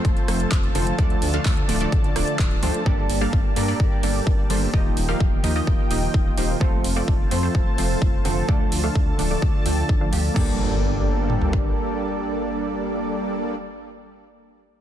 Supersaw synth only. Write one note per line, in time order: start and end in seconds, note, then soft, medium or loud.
0.00 0.11 F3 medium
0.00 0.11 A3 medium
0.00 0.11 C4 medium
0.00 0.11 A4 medium
0.00 0.11 C5 loud
0.28 0.57 F3 medium
0.28 0.57 A3 medium
0.28 0.57 C4 medium
0.28 0.57 A4 medium
0.28 0.57 C5 medium
0.75 0.96 F3 medium
0.75 0.96 A3 medium
0.75 0.96 C4 medium
0.75 0.96 A4 medium
0.75 0.96 C5 medium
0.99 1.31 F3 medium
0.99 1.31 A3 medium
0.99 1.31 D4 medium
0.99 1.31 A4 medium
0.99 1.31 D5 loud
1.34 1.52 F3 medium
1.34 1.52 A3 medium
1.34 1.52 D4 medium
1.34 1.52 A4 medium
1.34 1.52 F5 loud
1.69 1.79 F3 medium
1.69 1.79 A3 medium
1.69 1.79 D4 medium
1.69 1.79 A4 medium
1.69 1.79 D5 loud
1.81 1.99 F3 medium
1.81 1.99 A3 medium
1.81 1.99 D4 medium
1.81 1.99 A4 medium
1.81 1.99 D5 medium
2.16 2.45 F3 medium
2.16 2.45 A3 medium
2.16 2.45 D4 medium
2.16 2.45 A4 medium
2.16 2.45 D5 medium
2.63 2.83 F3 medium
2.63 2.83 A3 medium
2.63 2.83 D4 medium
2.63 2.83 A4 medium
2.63 2.83 C5 medium
2.86 3.19 G3 medium
2.86 3.18 A#3 medium
2.86 3.19 D4 medium
2.86 3.18 A4 medium
2.86 3.18 D5 loud
3.21 3.39 G3 medium
3.21 3.39 A#3 medium
3.21 3.39 D4 medium
3.21 3.39 A4 medium
3.21 3.39 F5 loud
3.56 3.66 G3 medium
3.56 3.66 A#3 medium
3.56 3.66 D4 medium
3.56 3.66 A4 medium
3.56 3.66 D5 loud
3.68 3.86 G3 medium
3.68 3.86 A#3 medium
3.68 3.86 D4 medium
3.68 3.86 A4 medium
3.68 3.86 D5 loud
4.03 4.32 G3 medium
4.03 4.32 A#3 medium
4.03 4.32 D4 medium
4.03 4.32 A4 medium
4.03 4.32 D5 medium
4.50 4.71 G3 medium
4.50 4.71 A#3 medium
4.50 4.71 D4 medium
4.50 4.71 A4 medium
4.50 4.71 C5 medium
4.74 5.06 F3 medium
4.74 5.06 A#3 medium
4.74 5.06 D#4 medium
4.74 5.06 G4 medium
4.74 5.06 D#5 loud
5.09 5.27 F3 medium
5.09 5.27 A#3 medium
5.09 5.27 D#4 medium
5.09 5.27 G4 medium
5.09 5.27 F5 loud
5.44 5.54 F3 medium
5.44 5.54 A#3 medium
5.44 5.54 D#4 medium
5.44 5.54 G4 medium
5.44 5.54 D#5 medium
5.56 5.74 F3 medium
5.56 5.74 A#3 medium
5.56 5.74 D#4 medium
5.56 5.74 G4 medium
5.56 5.74 D#5 loud
5.91 6.20 F3 medium
5.91 6.20 A#3 medium
5.91 6.20 D#4 medium
5.91 6.20 G4 medium
5.91 6.20 D#5 medium
6.38 6.58 F3 medium
6.38 6.58 A#3 medium
6.38 6.58 D#4 medium
6.38 6.58 G4 medium
6.38 6.58 C5 medium
6.61 6.93 F3 loud
6.61 6.93 A3 medium
6.61 6.93 C4 medium
6.61 6.93 A4 medium
6.61 6.93 C5 loud
6.96 7.14 F3 medium
6.96 7.14 A3 medium
6.96 7.14 C4 medium
6.96 7.14 A4 medium
6.96 7.14 D5 loud
7.31 7.41 F3 medium
7.31 7.41 A3 medium
7.31 7.41 C4 medium
7.31 7.41 A4 medium
7.31 7.41 C5 loud
7.43 7.61 F3 medium
7.43 7.61 A3 medium
7.43 7.61 C4 medium
7.43 7.61 A4 medium
7.43 7.61 C5 medium
7.78 8.07 F3 medium
7.78 8.07 A3 medium
7.78 8.07 C4 medium
7.78 8.07 A4 medium
7.78 8.07 C5 medium
8.25 8.46 F3 medium
8.25 8.46 A3 medium
8.25 8.46 C4 medium
8.25 8.46 A4 medium
8.25 8.46 C5 medium
8.49 8.81 F3 medium
8.49 8.81 A3 medium
8.49 8.81 D4 medium
8.49 8.81 A4 medium
8.49 8.81 D5 loud
8.84 9.02 F3 medium
8.84 9.02 A3 medium
8.84 9.02 D4 medium
8.84 9.02 A4 medium
8.84 9.02 F5 loud
9.19 9.29 F3 medium
9.19 9.29 A3 medium
9.19 9.29 D4 medium
9.19 9.29 A4 medium
9.19 9.29 D5 medium
9.31 9.49 F3 medium
9.31 9.49 A3 medium
9.31 9.49 D4 medium
9.31 9.49 A4 medium
9.31 9.49 D5 loud
9.66 9.95 F3 medium
9.66 9.95 A3 medium
9.66 9.95 D4 medium
9.66 9.95 A4 medium
9.66 9.95 G5 loud
10.01 10.33 F3 medium
10.01 10.33 A3 medium
10.01 10.33 D4 medium
10.01 10.33 A4 medium
10.01 10.33 F5 medium
10.36 13.55 G3 medium
10.36 13.55 A#3 medium
10.36 13.55 D4 medium
10.36 13.55 A4 medium
10.36 13.55 D5 medium